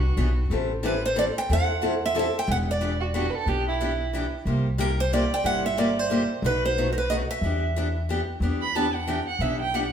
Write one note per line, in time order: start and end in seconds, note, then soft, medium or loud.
0.00 0.12 C2 medium
0.00 0.47 F#4 medium
0.17 0.45 B1 medium
0.17 0.28 E3 medium
0.17 0.28 B3 medium
0.17 0.28 D4 medium
0.17 0.29 G4 medium
0.50 1.29 A1 medium
0.50 0.71 E3 medium
0.50 0.71 G3 medium
0.50 0.71 C4 medium
0.50 0.71 E4 medium
0.50 0.72 A4 medium
0.83 0.94 E3 medium
0.83 0.94 G3 medium
0.83 0.94 C4 medium
0.83 0.94 E4 medium
0.83 0.94 A4 medium
0.83 1.05 B4 medium
1.06 1.17 C5 medium
1.16 1.27 E3 medium
1.16 1.27 G3 medium
1.16 1.27 C4 medium
1.16 1.27 E4 medium
1.16 1.27 A4 medium
1.16 1.24 D5 medium
1.38 1.51 G5 medium
1.49 2.28 E2 medium
1.49 1.70 E3 medium
1.49 1.70 G3 medium
1.49 1.70 C4 medium
1.49 1.70 E4 medium
1.49 1.70 A4 medium
1.49 2.05 F#5 medium
1.82 1.93 E3 medium
1.82 1.93 G3 medium
1.82 1.93 C4 medium
1.82 1.93 E4 medium
1.82 1.93 A4 medium
2.06 2.17 E5 medium
2.15 2.26 E3 medium
2.15 2.26 G3 medium
2.15 2.26 C4 medium
2.15 2.26 E4 medium
2.15 2.26 A4 medium
2.19 2.38 E5 medium
2.39 2.49 G5 medium
2.47 3.27 E1 medium
2.47 2.68 E3 medium
2.47 2.68 B3 medium
2.47 2.68 D4 medium
2.47 2.69 G4 medium
2.51 2.56 F#5 medium
2.71 3.12 D5 medium
2.81 2.92 E3 medium
2.81 2.92 B3 medium
2.81 2.92 D4 medium
2.81 2.92 G4 medium
3.01 3.07 F#4 medium
3.14 3.25 E3 medium
3.14 3.25 B3 medium
3.14 3.25 D4 medium
3.14 3.31 F#4 medium
3.14 3.25 G4 medium
3.30 3.36 B4 medium
3.35 3.49 A4 medium
3.46 4.26 B1 medium
3.46 3.67 E3 medium
3.46 3.67 B3 medium
3.46 3.68 D4 medium
3.46 3.68 G4 medium
3.46 3.67 G4 medium
3.68 4.29 E4 medium
3.81 3.91 E3 medium
3.81 3.91 B3 medium
3.81 3.92 D4 medium
3.81 3.92 G4 medium
4.13 4.24 E3 medium
4.13 4.25 B3 medium
4.13 4.25 D4 medium
4.13 4.25 G4 medium
4.45 5.25 C2 medium
4.45 4.66 C3 medium
4.45 4.67 G3 medium
4.45 4.67 A#3 medium
4.45 4.67 E4 medium
4.45 4.67 G4 medium
4.78 4.89 C3 medium
4.78 4.90 G3 medium
4.78 4.90 A#3 medium
4.78 4.90 E4 medium
4.78 4.90 G4 medium
4.78 5.00 A#4 medium
5.00 5.13 C5 medium
5.13 5.23 C3 medium
5.13 5.23 G3 medium
5.13 5.23 A#3 medium
5.13 5.23 E4 medium
5.13 5.24 G4 medium
5.13 5.33 D5 medium
5.34 5.46 G5 medium
5.44 6.23 G1 medium
5.44 5.65 C3 medium
5.44 5.65 G3 medium
5.44 5.65 A#3 medium
5.44 5.65 E4 medium
5.44 5.65 G4 medium
5.44 5.65 F#5 medium
5.66 5.79 E5 medium
5.78 5.88 C3 medium
5.78 5.89 G3 medium
5.78 5.89 A#3 medium
5.78 5.89 E4 medium
5.78 5.89 G4 medium
5.78 5.99 D5 medium
5.99 6.46 C5 medium
6.10 6.21 C3 medium
6.10 6.22 G3 medium
6.10 6.22 A#3 medium
6.10 6.22 E4 medium
6.10 6.22 G4 medium
6.42 7.22 B1 medium
6.42 6.64 B2 medium
6.42 6.64 F#3 medium
6.42 6.64 A3 medium
6.42 6.65 D#4 medium
6.42 6.65 F#4 medium
6.42 6.63 B4 medium
6.65 6.91 C5 medium
6.78 6.88 B2 medium
6.78 6.88 F#3 medium
6.78 6.88 A3 medium
6.78 6.88 D#4 medium
6.78 6.89 F#4 medium
6.93 6.97 A#4 medium
6.98 7.09 B4 medium
7.10 7.21 B2 medium
7.10 7.21 F#3 medium
7.10 7.21 A3 medium
7.10 7.21 D#4 medium
7.10 7.22 F#4 medium
7.10 7.15 D#5 medium
7.31 8.25 E5 medium
7.41 8.21 E2 medium
7.41 7.63 E3 medium
7.41 7.63 B3 medium
7.41 7.64 D4 medium
7.41 7.64 G4 medium
7.76 7.87 E3 medium
7.76 7.87 B3 medium
7.76 7.87 D4 medium
7.76 7.87 G4 medium
8.09 8.20 E3 medium
8.09 8.20 B3 medium
8.09 8.20 D4 medium
8.09 8.20 G4 medium
8.40 9.20 E2 medium
8.40 8.62 E3 medium
8.40 8.62 B3 medium
8.40 8.62 D4 medium
8.40 8.63 G4 medium
8.61 8.77 B5 medium
8.75 8.86 E3 medium
8.75 8.86 B3 medium
8.75 8.86 D4 medium
8.75 8.86 G4 medium
8.75 8.96 A5 medium
8.94 9.09 F#5 medium
9.07 9.18 E3 medium
9.07 9.18 B3 medium
9.07 9.19 D4 medium
9.07 9.19 G4 medium
9.07 9.27 G5 medium
9.28 9.43 F#5 medium
9.39 9.92 B1 medium
9.39 9.61 E3 medium
9.39 9.61 B3 medium
9.39 9.61 D4 medium
9.39 9.61 G4 medium
9.39 9.59 E5 medium
9.60 9.76 G5 medium
9.74 9.84 E3 medium
9.74 9.85 B3 medium
9.74 9.85 D4 medium
9.74 9.85 G4 medium
9.74 9.92 F#5 medium